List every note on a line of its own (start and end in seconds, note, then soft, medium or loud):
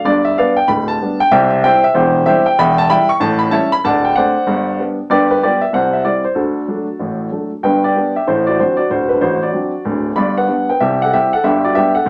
0.05 0.32 G1 medium
0.05 0.32 G2 medium
0.05 0.25 D5 loud
0.25 0.37 E5 medium
0.38 0.55 G3 soft
0.38 0.56 B3 medium
0.38 0.56 D4 medium
0.38 0.57 B4 medium
0.38 0.57 D5 medium
0.38 0.57 F5 medium
0.57 0.68 G5 medium
0.68 0.95 D1 medium
0.68 0.95 D2 medium
0.68 0.88 B5 loud
0.88 1.20 A5 loud
1.01 1.18 G3 medium
1.01 1.19 B3 soft
1.01 1.19 D4 medium
1.20 1.32 G5 loud
1.31 1.58 C2 medium
1.31 1.59 C3 medium
1.31 1.51 G4 medium
1.31 1.51 C5 medium
1.31 1.49 E5 loud
1.50 1.63 E5 medium
1.64 1.82 G3 medium
1.64 1.81 C4 medium
1.64 1.82 E4 medium
1.64 1.83 C5 medium
1.64 1.82 E5 medium
1.64 1.84 G5 loud
1.84 1.95 E5 loud
1.94 2.21 E1 medium
1.94 2.22 E2 medium
1.94 2.25 E4 medium
1.94 2.25 G4 medium
1.94 2.26 C5 medium
2.26 2.44 G3 medium
2.26 2.44 C4 medium
2.26 2.44 E4 medium
2.26 2.46 G4 medium
2.26 2.46 C5 medium
2.26 2.46 E5 loud
2.46 2.58 G5 loud
2.59 2.85 E1 medium
2.59 2.85 E2 loud
2.59 2.78 E5 medium
2.59 2.78 G5 medium
2.59 2.79 B5 loud
2.78 2.90 A5 loud
2.89 3.07 G3 medium
2.89 3.07 E4 medium
2.89 3.09 E5 medium
2.89 3.09 G5 medium
2.89 3.10 B5 loud
3.09 3.21 C#6 loud
3.20 3.48 A1 medium
3.20 3.48 A2 loud
3.20 3.41 A5 loud
3.39 3.52 B5 loud
3.51 3.69 G3 medium
3.51 3.69 C#4 medium
3.51 3.70 E4 medium
3.51 3.71 C#5 medium
3.51 3.71 E5 medium
3.51 3.72 A5 loud
3.72 3.84 B5 loud
3.84 4.11 D1 medium
3.84 4.11 D2 medium
3.84 4.04 D5 medium
3.84 4.04 F#5 medium
3.84 4.05 A5 loud
4.05 4.16 G5 medium
4.16 4.34 A3 soft
4.16 4.34 C4 medium
4.16 4.34 D4 medium
4.16 4.65 C5 medium
4.16 4.65 D5 medium
4.16 4.68 F#5 loud
4.47 4.74 G1 medium
4.47 4.74 G2 medium
4.79 4.97 G3 soft
4.79 4.97 B3 soft
4.79 4.98 D4 soft
5.10 5.37 G1 medium
5.10 5.37 G2 medium
5.10 5.30 G4 medium
5.10 5.29 B4 medium
5.10 5.31 D5 loud
5.31 5.43 B4 medium
5.43 5.60 G3 medium
5.43 5.61 B3 soft
5.43 5.61 F4 medium
5.43 5.62 G4 medium
5.43 5.62 B4 medium
5.43 5.63 D5 medium
5.61 5.74 E5 medium
5.73 6.00 C2 medium
5.73 6.01 C3 medium
5.73 5.93 C5 medium
5.73 5.94 F#5 medium
5.93 6.05 E5 medium
6.05 6.23 G3 soft
6.05 6.23 C4 soft
6.05 6.23 E4 soft
6.05 6.25 D5 medium
6.24 6.37 C5 medium
6.35 6.63 D2 medium
6.35 6.63 D3 medium
6.35 6.67 D4 soft
6.35 7.47 F#4 soft
6.35 7.51 A4 medium
6.68 6.86 F#3 soft
6.68 6.87 A3 soft
6.68 6.86 D4 soft
7.00 7.27 A1 medium
7.00 7.27 A2 medium
7.31 7.49 F#3 soft
7.31 7.50 A3 soft
7.31 7.49 D4 soft
7.63 7.91 G1 medium
7.63 7.90 G2 medium
7.63 7.83 B4 medium
7.63 7.84 G5 medium
7.84 8.14 G4 medium
7.84 8.16 D5 medium
7.96 8.14 G3 soft
7.96 8.14 B3 soft
7.96 8.14 D4 medium
8.16 8.27 G4 medium
8.16 8.28 E5 medium
8.27 8.54 A1 medium
8.27 8.54 A2 medium
8.27 8.47 E4 medium
8.27 8.47 C5 medium
8.47 8.59 F#4 medium
8.47 8.59 D5 medium
8.60 8.77 F#3 soft
8.60 8.77 C4 soft
8.60 8.78 D4 soft
8.60 8.77 F#4 medium
8.60 8.79 C5 medium
8.77 8.90 F#4 medium
8.77 8.90 D5 medium
8.90 9.16 D1 medium
8.90 9.16 D2 medium
8.90 9.10 F#4 medium
8.90 9.11 C5 medium
9.09 9.22 D4 soft
9.09 9.22 B4 medium
9.21 9.47 A1 medium
9.21 9.41 F#4 medium
9.21 9.42 C5 medium
9.43 10.03 F#4 medium
9.43 10.06 D5 medium
9.53 9.71 F#3 soft
9.53 9.71 C4 soft
9.53 9.71 D4 soft
9.85 10.11 D1 medium
9.85 10.11 D2 medium
10.16 10.43 G1 medium
10.16 10.44 G2 medium
10.16 10.36 D5 medium
10.16 10.37 B5 medium
10.38 10.67 B4 medium
10.38 10.69 F#5 medium
10.48 10.66 G3 soft
10.48 10.66 B3 soft
10.48 10.66 D4 medium
10.69 10.81 B4 medium
10.69 10.81 G5 medium
10.80 11.08 C2 medium
10.80 11.08 C3 medium
10.80 11.00 G4 medium
10.80 11.01 E5 medium
11.02 11.13 A4 medium
11.02 11.13 F#5 medium
11.12 11.30 G3 soft
11.12 11.31 C4 medium
11.12 11.31 E4 medium
11.12 11.32 G4 medium
11.12 11.33 E5 medium
11.33 11.45 A4 medium
11.33 11.44 F#5 medium
11.44 11.71 G1 medium
11.44 11.71 G2 medium
11.44 11.64 G4 medium
11.44 11.64 E5 medium
11.64 11.76 F#4 medium
11.64 11.76 D5 medium
11.75 11.93 G3 medium
11.75 11.93 B3 soft
11.75 11.93 D4 medium
11.75 11.95 G4 medium
11.75 11.96 E5 loud
11.95 12.09 A4 medium
11.95 12.09 F#5 medium
12.06 12.09 D1 medium
12.06 12.09 D2 medium